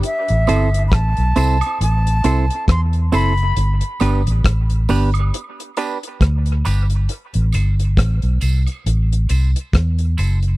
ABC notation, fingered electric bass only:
X:1
M:4/4
L:1/16
Q:"Swing 16ths" 1/4=68
K:Ador
V:1 name="Fingered electric bass" clef=bass
z A,,, G,,,2 A,,, B,,, C,, z A,,,2 C,, z E,,2 F,,,2 | G,,, z G,,, A,,, A,,,2 G,,,2 z4 D,,2 G,,,2 | z A,,, G,,,2 A,,, B,,, C,, z A,,,2 C,, z E,,2 F,,,2 |]